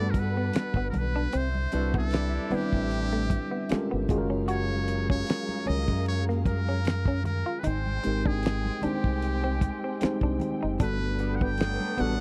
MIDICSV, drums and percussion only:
0, 0, Header, 1, 2, 480
1, 0, Start_track
1, 0, Tempo, 789474
1, 806, Time_signature, 4, 2, 24, 8
1, 7420, End_track
2, 0, Start_track
2, 0, Title_t, "Drums"
2, 85, Note_on_c, 9, 36, 93
2, 87, Note_on_c, 9, 62, 29
2, 87, Note_on_c, 9, 63, 72
2, 88, Note_on_c, 9, 42, 64
2, 146, Note_off_c, 9, 36, 0
2, 148, Note_off_c, 9, 42, 0
2, 148, Note_off_c, 9, 62, 0
2, 148, Note_off_c, 9, 63, 0
2, 324, Note_on_c, 9, 42, 98
2, 331, Note_on_c, 9, 62, 29
2, 331, Note_on_c, 9, 63, 45
2, 339, Note_on_c, 9, 26, 94
2, 342, Note_on_c, 9, 38, 121
2, 385, Note_off_c, 9, 42, 0
2, 392, Note_off_c, 9, 62, 0
2, 392, Note_off_c, 9, 63, 0
2, 400, Note_off_c, 9, 26, 0
2, 403, Note_off_c, 9, 38, 0
2, 449, Note_on_c, 9, 36, 89
2, 510, Note_off_c, 9, 36, 0
2, 567, Note_on_c, 9, 62, 32
2, 567, Note_on_c, 9, 63, 68
2, 567, Note_on_c, 9, 64, 68
2, 570, Note_on_c, 9, 42, 70
2, 628, Note_off_c, 9, 62, 0
2, 628, Note_off_c, 9, 63, 0
2, 628, Note_off_c, 9, 64, 0
2, 631, Note_off_c, 9, 42, 0
2, 806, Note_on_c, 9, 42, 94
2, 867, Note_off_c, 9, 42, 0
2, 940, Note_on_c, 9, 63, 67
2, 1001, Note_off_c, 9, 63, 0
2, 1045, Note_on_c, 9, 42, 65
2, 1106, Note_off_c, 9, 42, 0
2, 1180, Note_on_c, 9, 36, 99
2, 1241, Note_off_c, 9, 36, 0
2, 1282, Note_on_c, 9, 42, 86
2, 1300, Note_on_c, 9, 26, 93
2, 1304, Note_on_c, 9, 38, 115
2, 1343, Note_off_c, 9, 42, 0
2, 1361, Note_off_c, 9, 26, 0
2, 1365, Note_off_c, 9, 38, 0
2, 1422, Note_on_c, 9, 63, 65
2, 1482, Note_off_c, 9, 63, 0
2, 1523, Note_on_c, 9, 63, 59
2, 1523, Note_on_c, 9, 64, 60
2, 1525, Note_on_c, 9, 46, 55
2, 1584, Note_off_c, 9, 63, 0
2, 1584, Note_off_c, 9, 64, 0
2, 1586, Note_off_c, 9, 46, 0
2, 1657, Note_on_c, 9, 36, 84
2, 1718, Note_off_c, 9, 36, 0
2, 1769, Note_on_c, 9, 42, 77
2, 1830, Note_off_c, 9, 42, 0
2, 1907, Note_on_c, 9, 38, 39
2, 1968, Note_off_c, 9, 38, 0
2, 2006, Note_on_c, 9, 36, 85
2, 2007, Note_on_c, 9, 62, 32
2, 2007, Note_on_c, 9, 63, 69
2, 2010, Note_on_c, 9, 42, 61
2, 2067, Note_off_c, 9, 36, 0
2, 2068, Note_off_c, 9, 62, 0
2, 2068, Note_off_c, 9, 63, 0
2, 2071, Note_off_c, 9, 42, 0
2, 2246, Note_on_c, 9, 42, 94
2, 2250, Note_on_c, 9, 62, 31
2, 2250, Note_on_c, 9, 63, 51
2, 2260, Note_on_c, 9, 26, 101
2, 2263, Note_on_c, 9, 38, 124
2, 2306, Note_off_c, 9, 42, 0
2, 2311, Note_off_c, 9, 62, 0
2, 2311, Note_off_c, 9, 63, 0
2, 2321, Note_off_c, 9, 26, 0
2, 2324, Note_off_c, 9, 38, 0
2, 2484, Note_on_c, 9, 63, 70
2, 2484, Note_on_c, 9, 64, 66
2, 2487, Note_on_c, 9, 36, 98
2, 2492, Note_on_c, 9, 42, 76
2, 2544, Note_off_c, 9, 63, 0
2, 2544, Note_off_c, 9, 64, 0
2, 2547, Note_off_c, 9, 36, 0
2, 2553, Note_off_c, 9, 42, 0
2, 2723, Note_on_c, 9, 62, 39
2, 2726, Note_on_c, 9, 42, 85
2, 2783, Note_off_c, 9, 62, 0
2, 2787, Note_off_c, 9, 42, 0
2, 2858, Note_on_c, 9, 63, 65
2, 2919, Note_off_c, 9, 63, 0
2, 2966, Note_on_c, 9, 42, 67
2, 3027, Note_off_c, 9, 42, 0
2, 3099, Note_on_c, 9, 36, 95
2, 3160, Note_off_c, 9, 36, 0
2, 3203, Note_on_c, 9, 42, 88
2, 3222, Note_on_c, 9, 26, 93
2, 3225, Note_on_c, 9, 38, 127
2, 3264, Note_off_c, 9, 42, 0
2, 3282, Note_off_c, 9, 26, 0
2, 3286, Note_off_c, 9, 38, 0
2, 3337, Note_on_c, 9, 63, 74
2, 3398, Note_off_c, 9, 63, 0
2, 3441, Note_on_c, 9, 63, 62
2, 3441, Note_on_c, 9, 64, 56
2, 3444, Note_on_c, 9, 46, 55
2, 3502, Note_off_c, 9, 63, 0
2, 3502, Note_off_c, 9, 64, 0
2, 3505, Note_off_c, 9, 46, 0
2, 3576, Note_on_c, 9, 36, 79
2, 3637, Note_off_c, 9, 36, 0
2, 3684, Note_on_c, 9, 62, 32
2, 3685, Note_on_c, 9, 42, 76
2, 3745, Note_off_c, 9, 62, 0
2, 3746, Note_off_c, 9, 42, 0
2, 3826, Note_on_c, 9, 38, 38
2, 3887, Note_off_c, 9, 38, 0
2, 3925, Note_on_c, 9, 36, 93
2, 3926, Note_on_c, 9, 62, 28
2, 3926, Note_on_c, 9, 63, 74
2, 3928, Note_on_c, 9, 42, 64
2, 3986, Note_off_c, 9, 36, 0
2, 3987, Note_off_c, 9, 62, 0
2, 3987, Note_off_c, 9, 63, 0
2, 3989, Note_off_c, 9, 42, 0
2, 4165, Note_on_c, 9, 42, 100
2, 4170, Note_on_c, 9, 63, 49
2, 4179, Note_on_c, 9, 26, 97
2, 4183, Note_on_c, 9, 38, 123
2, 4226, Note_off_c, 9, 42, 0
2, 4231, Note_off_c, 9, 63, 0
2, 4240, Note_off_c, 9, 26, 0
2, 4244, Note_off_c, 9, 38, 0
2, 4289, Note_on_c, 9, 36, 97
2, 4350, Note_off_c, 9, 36, 0
2, 4402, Note_on_c, 9, 63, 70
2, 4402, Note_on_c, 9, 64, 62
2, 4411, Note_on_c, 9, 42, 72
2, 4463, Note_off_c, 9, 63, 0
2, 4463, Note_off_c, 9, 64, 0
2, 4472, Note_off_c, 9, 42, 0
2, 4641, Note_on_c, 9, 64, 83
2, 4645, Note_on_c, 9, 42, 98
2, 4702, Note_off_c, 9, 64, 0
2, 4706, Note_off_c, 9, 42, 0
2, 4777, Note_on_c, 9, 63, 63
2, 4838, Note_off_c, 9, 63, 0
2, 4885, Note_on_c, 9, 42, 65
2, 4946, Note_off_c, 9, 42, 0
2, 5020, Note_on_c, 9, 36, 91
2, 5080, Note_off_c, 9, 36, 0
2, 5123, Note_on_c, 9, 62, 31
2, 5125, Note_on_c, 9, 42, 84
2, 5143, Note_on_c, 9, 26, 96
2, 5147, Note_on_c, 9, 38, 110
2, 5184, Note_off_c, 9, 62, 0
2, 5186, Note_off_c, 9, 42, 0
2, 5204, Note_off_c, 9, 26, 0
2, 5208, Note_off_c, 9, 38, 0
2, 5259, Note_on_c, 9, 63, 69
2, 5320, Note_off_c, 9, 63, 0
2, 5361, Note_on_c, 9, 63, 64
2, 5361, Note_on_c, 9, 64, 61
2, 5367, Note_on_c, 9, 42, 80
2, 5422, Note_off_c, 9, 63, 0
2, 5422, Note_off_c, 9, 64, 0
2, 5428, Note_off_c, 9, 42, 0
2, 5496, Note_on_c, 9, 36, 91
2, 5557, Note_off_c, 9, 36, 0
2, 5608, Note_on_c, 9, 42, 81
2, 5669, Note_off_c, 9, 42, 0
2, 5845, Note_on_c, 9, 36, 82
2, 5845, Note_on_c, 9, 63, 69
2, 5849, Note_on_c, 9, 42, 66
2, 5906, Note_off_c, 9, 36, 0
2, 5906, Note_off_c, 9, 63, 0
2, 5909, Note_off_c, 9, 42, 0
2, 6086, Note_on_c, 9, 42, 96
2, 6090, Note_on_c, 9, 62, 33
2, 6090, Note_on_c, 9, 63, 49
2, 6100, Note_on_c, 9, 26, 86
2, 6103, Note_on_c, 9, 38, 110
2, 6146, Note_off_c, 9, 42, 0
2, 6151, Note_off_c, 9, 62, 0
2, 6151, Note_off_c, 9, 63, 0
2, 6161, Note_off_c, 9, 26, 0
2, 6164, Note_off_c, 9, 38, 0
2, 6209, Note_on_c, 9, 36, 94
2, 6270, Note_off_c, 9, 36, 0
2, 6322, Note_on_c, 9, 63, 73
2, 6322, Note_on_c, 9, 64, 70
2, 6331, Note_on_c, 9, 42, 67
2, 6383, Note_off_c, 9, 63, 0
2, 6383, Note_off_c, 9, 64, 0
2, 6392, Note_off_c, 9, 42, 0
2, 6559, Note_on_c, 9, 62, 34
2, 6565, Note_on_c, 9, 42, 95
2, 6566, Note_on_c, 9, 36, 115
2, 6619, Note_off_c, 9, 62, 0
2, 6626, Note_off_c, 9, 42, 0
2, 6627, Note_off_c, 9, 36, 0
2, 6694, Note_on_c, 9, 63, 66
2, 6754, Note_off_c, 9, 63, 0
2, 6803, Note_on_c, 9, 42, 67
2, 6864, Note_off_c, 9, 42, 0
2, 6938, Note_on_c, 9, 36, 92
2, 6999, Note_off_c, 9, 36, 0
2, 7039, Note_on_c, 9, 42, 83
2, 7040, Note_on_c, 9, 62, 33
2, 7057, Note_on_c, 9, 26, 95
2, 7061, Note_on_c, 9, 38, 127
2, 7100, Note_off_c, 9, 42, 0
2, 7101, Note_off_c, 9, 62, 0
2, 7118, Note_off_c, 9, 26, 0
2, 7122, Note_off_c, 9, 38, 0
2, 7177, Note_on_c, 9, 63, 66
2, 7237, Note_off_c, 9, 63, 0
2, 7280, Note_on_c, 9, 62, 29
2, 7280, Note_on_c, 9, 63, 57
2, 7280, Note_on_c, 9, 64, 61
2, 7284, Note_on_c, 9, 42, 83
2, 7341, Note_off_c, 9, 62, 0
2, 7341, Note_off_c, 9, 63, 0
2, 7341, Note_off_c, 9, 64, 0
2, 7345, Note_off_c, 9, 42, 0
2, 7420, End_track
0, 0, End_of_file